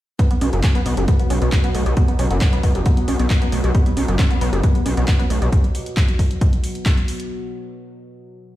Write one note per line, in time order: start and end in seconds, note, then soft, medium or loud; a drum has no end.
0.19 7.35 B2 medium
0.19 7.35 F#3 medium
0.19 0.28 B3 loud
0.19 kick loud
0.19 closed hi-hat loud
0.31 0.34 B3 loud
0.31 closed hi-hat medium
0.41 0.50 B1 loud
0.41 0.45 C#4 medium
0.41 open hi-hat loud
0.53 0.61 F#1 medium
0.53 0.56 F#4 medium
0.53 closed hi-hat medium
0.64 0.67 C#4 medium
0.64 kick loud
0.64 clap loud
0.64 closed hi-hat loud
0.75 0.81 B3 loud
0.75 closed hi-hat medium
0.86 0.94 B1 loud
0.86 0.95 B3 loud
0.86 open hi-hat medium
0.97 1.05 F#1 medium
0.97 1.03 G4 medium
0.97 closed hi-hat medium
1.08 1.17 B3 loud
1.08 kick loud
1.08 closed hi-hat loud
1.19 1.28 B3 medium
1.19 closed hi-hat medium
1.30 1.38 B1 loud
1.30 1.34 C#4 medium
1.30 open hi-hat loud
1.42 1.49 B1 medium
1.42 1.47 B3 loud
1.42 closed hi-hat medium
1.52 1.58 B3 medium
1.52 kick loud
1.52 clap loud
1.52 closed hi-hat loud
1.64 1.70 B3 loud
1.64 closed hi-hat medium
1.75 1.83 B1 loud
1.75 1.84 A3 medium
1.75 open hi-hat medium
1.86 1.94 B1 medium
1.86 1.92 G4 medium
1.86 closed hi-hat medium
1.97 2.06 B3 loud
1.97 kick loud
1.97 closed hi-hat loud
2.08 2.12 B3 loud
2.08 closed hi-hat medium
2.19 2.27 B1 medium
2.19 2.23 C#4 medium
2.19 open hi-hat loud
2.31 2.38 F#1 medium
2.31 2.34 F#4 medium
2.31 closed hi-hat medium
2.41 2.45 C#4 medium
2.41 kick loud
2.41 clap loud
2.41 closed hi-hat loud
2.53 2.58 B3 loud
2.53 closed hi-hat medium
2.63 2.72 B1 medium
2.63 2.72 B3 loud
2.63 kick medium
2.63 open hi-hat loud
2.75 2.83 F#1 medium
2.75 2.81 G4 medium
2.75 closed hi-hat medium
2.86 2.95 B3 loud
2.86 kick loud
2.86 closed hi-hat loud
2.97 3.06 B3 medium
2.97 closed hi-hat medium
3.08 3.16 B1 medium
3.08 3.12 C#4 medium
3.08 open hi-hat loud
3.19 3.27 B1 medium
3.19 3.25 B3 loud
3.19 closed hi-hat medium
3.30 3.36 B3 medium
3.30 kick loud
3.30 clap loud
3.30 closed hi-hat loud
3.42 3.47 B3 loud
3.42 closed hi-hat medium
3.52 3.61 B1 loud
3.52 3.61 A3 medium
3.52 open hi-hat loud
3.64 3.72 B1 medium
3.64 3.70 G4 medium
3.64 closed hi-hat medium
3.75 3.84 B3 loud
3.75 kick loud
3.75 closed hi-hat loud
3.86 3.90 B3 loud
3.86 closed hi-hat medium
3.97 4.05 B1 loud
3.97 4.00 C#4 medium
3.97 open hi-hat loud
4.08 4.16 F#1 medium
4.08 4.12 F#4 medium
4.08 closed hi-hat medium
4.19 4.23 C#4 medium
4.19 kick loud
4.19 clap loud
4.19 closed hi-hat loud
4.31 4.36 B3 loud
4.31 closed hi-hat medium
4.41 4.50 B1 medium
4.41 4.50 B3 loud
4.41 open hi-hat loud
4.53 4.60 F#1 medium
4.53 4.58 G4 medium
4.53 closed hi-hat medium
4.64 4.72 B3 loud
4.64 kick loud
4.64 closed hi-hat medium
4.75 4.83 B3 medium
4.75 closed hi-hat medium
4.86 4.94 B1 loud
4.86 4.89 C#4 medium
4.86 open hi-hat loud
4.97 5.05 B1 medium
4.97 5.03 B3 loud
4.97 closed hi-hat medium
5.08 5.14 B3 medium
5.08 kick loud
5.08 clap loud
5.08 closed hi-hat loud
5.19 5.25 B3 loud
5.19 closed hi-hat medium
5.30 5.38 B1 medium
5.30 5.39 A3 medium
5.30 open hi-hat loud
5.42 5.49 B1 medium
5.42 5.47 G4 medium
5.42 closed hi-hat medium
5.52 kick loud
5.52 closed hi-hat medium
5.64 closed hi-hat medium
5.75 open hi-hat loud
5.86 closed hi-hat medium
5.97 kick loud
5.97 clap loud
5.97 closed hi-hat medium
6.09 closed hi-hat medium
6.19 kick medium
6.19 open hi-hat loud
6.31 closed hi-hat medium
6.41 kick loud
6.41 closed hi-hat loud
6.53 closed hi-hat medium
6.64 open hi-hat loud
6.75 closed hi-hat medium
6.86 kick loud
6.86 clap loud
6.86 closed hi-hat loud
6.97 closed hi-hat medium
7.08 open hi-hat loud
7.20 closed hi-hat medium